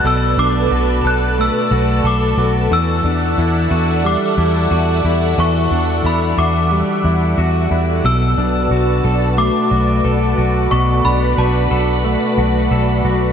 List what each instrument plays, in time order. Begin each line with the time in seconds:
Already playing: clean electric guitar A3 D4 F#4, analog synth pad A4 B4 D5 A5
0.04 fingered electric bass B1, clean electric guitar B2 A4, synth bell E6
0.38 fingered electric bass B1, clean electric guitar D4, synth bell D6
0.71 fingered electric bass B1, clean electric guitar F#4
1.04 fingered electric bass B1, clean electric guitar A4, synth bell F#6
1.38 clean electric guitar A3, synth bell E6
1.71 fingered electric bass B1, clean electric guitar F#4
2.04 fingered electric bass B1, clean electric guitar A4, synth bell D6
2.37 fingered electric bass B1, clean electric guitar F#4
2.71 fingered electric bass E2, clean electric guitar E3 F#4, analog synth pad D5 E5 F#5, synth bell E6
3.04 fingered electric bass E2, clean electric guitar D4
3.38 fingered electric bass E2, clean electric guitar E4
3.71 fingered electric bass E2, clean electric guitar F#4
4.04 clean electric guitar G3, synth bell D6
4.38 fingered electric bass E2, clean electric guitar E4
4.71 fingered electric bass E2, clean electric guitar F#4
5.05 fingered electric bass E2, clean electric guitar E4
5.38 fingered electric bass E2, clean electric guitar E3 F#4, synth bell C#6
5.71 fingered electric bass E2, clean electric guitar D4
6.04 fingered electric bass E2, clean electric guitar E4, synth bell B5
6.37 fingered electric bass E2, clean electric guitar F#4, synth bell D6
6.71 clean electric guitar G3
7.04 fingered electric bass E2, clean electric guitar E4
7.38 fingered electric bass E2, clean electric guitar F#4
7.71 fingered electric bass E2, clean electric guitar E4
8.04 fingered electric bass B1, clean electric guitar B2 A4, analog synth pad F#4 B4 D5 A5, synth bell E6
8.38 fingered electric bass B1, clean electric guitar D4
8.71 fingered electric bass B1, clean electric guitar F#4
9.04 fingered electric bass B1, clean electric guitar A4
9.37 clean electric guitar A3, synth bell D6
9.71 fingered electric bass B1, clean electric guitar F#4
10.04 fingered electric bass B1, clean electric guitar A4
10.38 fingered electric bass B1, clean electric guitar F#4
10.71 fingered electric bass B1, clean electric guitar B2 A4, analog synth pad B5, synth bell C#6
11.04 fingered electric bass B1, clean electric guitar D4, synth bell B5
11.38 fingered electric bass B1, clean electric guitar F#4, synth bell A5
11.71 fingered electric bass B1, clean electric guitar A4
12.04 clean electric guitar A3
12.37 fingered electric bass B1, clean electric guitar F#4
12.71 fingered electric bass B1, clean electric guitar A4
13.05 fingered electric bass B1, clean electric guitar F#4